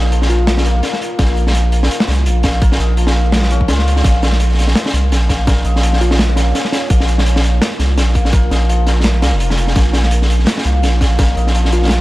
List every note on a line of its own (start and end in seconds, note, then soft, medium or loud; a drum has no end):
0.00 0.82 A#1 medium
0.00 0.11 F3 medium
0.00 0.65 A#3 medium
0.00 4.01 A#3 medium
0.00 2.79 D#4 medium
0.00 4.01 F4 medium
0.00 0.29 A#4 medium
0.00 4.03 A#4 medium
0.12 2.96 F3 medium
0.12 closed hi-hat medium
0.22 snare medium
0.30 0.65 F4 medium
0.30 2.61 A#4 medium
0.30 closed hi-hat medium
0.47 snare loud
0.47 closed hi-hat medium
0.57 snare medium
0.65 1.18 A#3 loud
0.65 closed hi-hat medium
0.83 snare medium
0.83 closed hi-hat medium
0.93 snare soft
1.02 closed hi-hat medium
1.19 1.89 A#1 loud
1.19 2.44 A#3 medium
1.19 kick loud
1.19 snare medium
1.19 closed hi-hat medium
1.37 closed hi-hat soft
1.46 snare soft
1.46 snare medium
1.49 snare soft
1.50 snare soft
1.52 snare soft
1.52 closed hi-hat medium
1.72 closed hi-hat medium
1.83 snare medium
1.91 closed hi-hat medium
2.00 snare loud
2.07 2.28 C2 medium
2.07 snare medium
2.07 closed hi-hat soft
2.11 closed hi-hat soft
2.13 closed hi-hat medium
2.26 2.79 A#1 medium
2.26 closed hi-hat medium
2.43 4.04 A#3 medium
2.43 kick medium
2.43 snare medium
2.43 closed hi-hat medium
2.62 3.15 A#4 medium
2.62 kick loud
2.62 closed hi-hat medium
2.72 snare medium
2.79 3.70 A#1 medium
2.79 5.65 D#4 medium
2.79 closed hi-hat medium
2.97 4.10 F3 medium
2.97 closed hi-hat medium
3.07 snare medium
3.15 5.47 A#4 medium
3.32 snare loud
3.32 snare medium
3.32 closed hi-hat medium
3.36 snare medium
3.38 snare medium
3.42 snare medium
3.44 snare soft
3.48 7.37 C#4 loud
3.48 snare soft
3.48 closed hi-hat medium
3.61 kick medium
3.68 4.03 C#2 loud
3.68 7.05 F4 medium
3.68 snare medium
3.68 closed hi-hat medium
3.79 snare soft
3.88 closed hi-hat medium
3.96 snare soft
4.04 4.75 A#1 loud
4.04 12.01 A#3 medium
4.04 5.29 A#3 medium
4.04 12.01 F4 medium
4.04 6.89 C#5 medium
4.04 kick loud
4.04 snare medium
4.04 closed hi-hat loud
4.22 snare medium
4.22 closed hi-hat medium
4.33 snare soft
4.40 closed hi-hat medium
4.49 snare soft
4.54 snare soft
4.59 snare soft
4.59 closed hi-hat medium
4.68 snare medium
4.75 snare loud
4.75 closed hi-hat medium
4.86 snare medium
4.93 5.13 C2 medium
4.93 closed hi-hat medium
5.11 5.64 A#1 medium
5.11 snare medium
5.11 closed hi-hat medium
5.29 6.36 A#3 medium
5.29 kick medium
5.29 snare medium
5.29 closed hi-hat medium
5.47 6.00 A#4 medium
5.47 kick loud
5.47 snare medium
5.47 closed hi-hat medium
5.65 6.53 A#1 medium
5.65 8.50 D#4 medium
5.65 closed hi-hat medium
5.76 snare medium
5.83 8.67 F3 medium
5.83 closed hi-hat medium
5.93 snare medium
6.01 6.37 F4 medium
6.01 8.32 A#4 medium
6.01 closed hi-hat medium
6.11 snare medium
6.19 snare loud
6.19 closed hi-hat medium
6.36 6.90 A#3 loud
6.36 snare medium
6.36 closed hi-hat medium
6.55 snare medium
6.55 closed hi-hat medium
6.65 snare soft
6.72 snare medium
6.72 closed hi-hat medium
6.90 7.61 A#1 loud
6.90 8.15 A#3 medium
6.90 9.75 A#4 medium
6.90 kick loud
6.90 closed hi-hat loud
7.00 snare soft
7.08 closed hi-hat medium
7.18 snare soft
7.18 snare medium
7.26 closed hi-hat medium
7.36 snare medium
7.44 closed hi-hat medium
7.61 snare loud
7.61 snare medium
7.61 closed hi-hat medium
7.79 7.99 C2 medium
7.79 snare soft
7.79 closed hi-hat medium
7.98 8.50 A#1 medium
7.98 snare medium
7.98 closed hi-hat medium
8.15 9.22 A#3 medium
8.15 kick medium
8.15 closed hi-hat medium
8.25 snare medium
8.33 8.86 A#4 medium
8.33 kick loud
8.33 closed hi-hat medium
8.51 9.24 A#1 medium
8.51 11.36 D#4 medium
8.51 snare medium
8.51 closed hi-hat medium
8.69 11.53 F3 medium
8.69 closed hi-hat medium
8.86 11.18 A#4 medium
8.86 snare soft
8.86 closed hi-hat medium
9.00 snare soft
9.00 closed hi-hat medium
9.04 snare loud
9.22 9.34 C2 medium
9.22 9.75 A#3 loud
9.22 snare medium
9.22 closed hi-hat medium
9.32 9.75 F1 medium
9.40 closed hi-hat medium
9.50 snare soft
9.50 snare medium
9.57 closed hi-hat medium
9.67 snare soft
9.75 10.46 A#1 loud
9.75 10.65 A#3 medium
9.75 12.01 C#5 medium
9.75 kick loud
9.75 snare medium
9.75 closed hi-hat medium
9.93 snare medium
9.93 closed hi-hat medium
10.03 snare soft
10.11 closed hi-hat medium
10.22 snare soft
10.30 closed hi-hat medium
10.39 snare soft
10.45 snare soft
10.47 snare loud
10.47 closed hi-hat medium
10.50 snare soft
10.58 snare medium
10.64 10.85 C2 medium
10.64 12.01 A#3 medium
10.64 closed hi-hat medium
10.83 11.36 A#1 medium
10.83 snare medium
10.83 closed hi-hat medium
11.01 kick medium
11.01 snare medium
11.01 closed hi-hat medium
11.19 11.72 A#4 medium
11.19 kick loud
11.19 snare medium
11.19 closed hi-hat medium
11.37 12.01 A#1 medium
11.37 12.01 D#4 medium
11.37 closed hi-hat medium
11.47 snare soft
11.54 12.01 F3 medium
11.54 closed hi-hat medium
11.65 snare soft
11.72 12.01 F4 loud
11.72 12.01 A#4 medium
11.72 closed hi-hat medium
11.82 snare soft
11.84 snare soft
11.86 snare medium
11.88 snare loud
11.88 snare medium
11.88 closed hi-hat medium